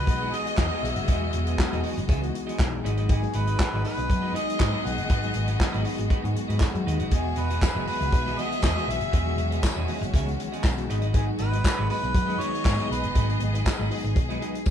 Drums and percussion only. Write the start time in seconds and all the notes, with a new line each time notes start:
0.07 kick, closed hi-hat
0.33 closed hi-hat
0.47 closed hi-hat
0.57 kick, snare, clap
0.84 snare, closed hi-hat
0.96 closed hi-hat
1.08 kick, closed hi-hat
1.33 closed hi-hat
1.47 closed hi-hat
1.59 kick, snare, clap
1.73 closed hi-hat
1.84 open hi-hat
1.98 closed hi-hat
2.09 kick, closed hi-hat
2.23 closed hi-hat
2.35 closed hi-hat
2.49 closed hi-hat
2.59 kick, snare, clap
2.85 snare, closed hi-hat
2.97 closed hi-hat
3.09 kick, closed hi-hat
3.23 closed hi-hat
3.33 closed hi-hat
3.47 closed hi-hat
3.59 kick, snare, clap
3.84 open hi-hat
3.99 closed hi-hat
4.10 kick, closed hi-hat
4.36 closed hi-hat
4.50 closed hi-hat
4.60 kick, snare, clap
4.86 closed hi-hat
4.98 closed hi-hat
5.09 kick, closed hi-hat
5.23 closed hi-hat
5.34 closed hi-hat
5.47 closed hi-hat
5.60 kick, snare, clap
5.74 closed hi-hat
5.85 open hi-hat
5.99 closed hi-hat
6.10 kick, closed hi-hat
6.25 closed hi-hat
6.36 closed hi-hat
6.50 closed hi-hat
6.60 kick, snare, clap
6.75 closed hi-hat
6.88 closed hi-hat
6.99 closed hi-hat
7.11 kick, closed hi-hat
7.36 closed hi-hat
7.50 closed hi-hat
7.62 kick, snare, clap, tambourine
7.87 open hi-hat
8.02 closed hi-hat
8.12 kick, closed hi-hat
8.27 closed hi-hat
8.39 closed hi-hat
8.52 closed hi-hat
8.62 kick, snare, clap, tambourine
8.78 closed hi-hat
8.89 snare, closed hi-hat
9.01 closed hi-hat
9.13 kick, closed hi-hat
9.38 closed hi-hat
9.52 closed hi-hat
9.63 kick, snare, clap, tambourine
9.88 open hi-hat
10.03 closed hi-hat
10.14 kick, closed hi-hat
10.28 closed hi-hat
10.40 closed hi-hat
10.53 closed hi-hat
10.63 kick, snare, clap, tambourine
10.78 closed hi-hat
10.89 snare, closed hi-hat
11.02 closed hi-hat
11.14 kick, closed hi-hat
11.38 closed hi-hat
11.53 closed hi-hat
11.64 kick, snare, clap, tambourine
11.90 open hi-hat
12.04 closed hi-hat
12.15 kick, closed hi-hat
12.30 closed hi-hat
12.41 closed hi-hat
12.55 closed hi-hat
12.65 kick, snare, clap, tambourine
12.80 closed hi-hat
12.91 snare, closed hi-hat
13.03 closed hi-hat
13.15 kick, closed hi-hat
13.30 closed hi-hat
13.40 closed hi-hat
13.55 closed hi-hat
13.66 kick, snare, clap, tambourine
13.91 open hi-hat
14.05 closed hi-hat
14.16 kick, closed hi-hat
14.30 closed hi-hat
14.42 closed hi-hat
14.55 closed hi-hat
14.66 kick, high tom, tambourine